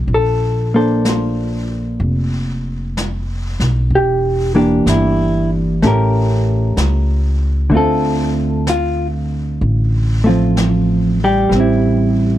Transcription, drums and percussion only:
0.08 brush sweep
1.05 brush sweep, snare, hi-hat pedal
2.01 brush sweep
2.97 brush sweep, snare, hi-hat pedal
3.60 snare
3.91 brush sweep
4.87 brush sweep, snare, hi-hat pedal
5.82 brush sweep, snare
6.77 brush sweep, snare, hi-hat pedal
7.72 brush sweep
8.67 brush sweep, snare, hi-hat pedal
9.62 brush sweep
10.57 brush sweep, snare, hi-hat pedal
11.52 brush sweep, snare

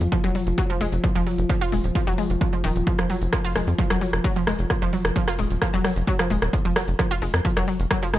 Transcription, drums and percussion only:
0.01 closed hi-hat
0.12 kick, closed hi-hat
0.24 closed hi-hat
0.35 open hi-hat
0.47 closed hi-hat
0.58 kick, closed hi-hat
0.70 closed hi-hat
0.81 open hi-hat
0.93 closed hi-hat
1.04 kick, closed hi-hat
1.16 closed hi-hat
1.27 open hi-hat
1.39 closed hi-hat
1.49 kick, closed hi-hat
1.61 closed hi-hat
1.72 open hi-hat
1.84 closed hi-hat
1.95 kick, closed hi-hat
2.07 closed hi-hat
2.18 open hi-hat
2.30 closed hi-hat
2.41 kick, closed hi-hat
2.53 closed hi-hat
2.64 open hi-hat
2.76 closed hi-hat
2.87 kick, closed hi-hat
2.99 cross-stick, closed hi-hat
3.10 open hi-hat
3.22 closed hi-hat
3.33 kick, cross-stick, closed hi-hat
3.45 closed hi-hat
3.56 cross-stick, open hi-hat
3.68 closed hi-hat
3.79 kick, closed hi-hat
3.90 cross-stick, closed hi-hat
4.01 open hi-hat
4.13 cross-stick, closed hi-hat
4.24 kick, closed hi-hat
4.36 closed hi-hat
4.47 cross-stick, open hi-hat
4.59 closed hi-hat
4.70 kick, cross-stick, closed hi-hat
4.82 closed hi-hat
4.93 open hi-hat
5.05 cross-stick, closed hi-hat
5.16 kick, closed hi-hat
5.28 cross-stick, closed hi-hat
5.39 open hi-hat
5.51 closed hi-hat
5.62 kick, cross-stick, closed hi-hat
5.74 closed hi-hat
5.84 cross-stick, open hi-hat
5.96 closed hi-hat
6.07 kick, closed hi-hat
6.19 cross-stick, closed hi-hat
6.30 open hi-hat
6.42 cross-stick, closed hi-hat
6.53 kick, closed hi-hat
6.65 closed hi-hat
6.76 cross-stick, open hi-hat
6.88 closed hi-hat
6.99 kick, cross-stick, closed hi-hat
7.11 closed hi-hat
7.22 open hi-hat
7.34 cross-stick, closed hi-hat
7.45 kick, closed hi-hat
7.57 cross-stick, closed hi-hat
7.68 open hi-hat
7.80 closed hi-hat
7.91 kick, cross-stick, closed hi-hat
8.03 closed hi-hat
8.14 cross-stick, open hi-hat

